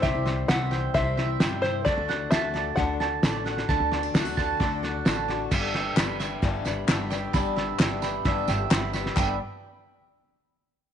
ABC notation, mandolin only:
X:1
M:4/4
L:1/8
Q:1/4=131
K:G
V:1 name="Mandolin"
[Gceg] c e g c e g c | d f a d2 a d f | a d f a d f a d | e g b e2 b e g |
b e g b e g b e | [egb] z6 z |]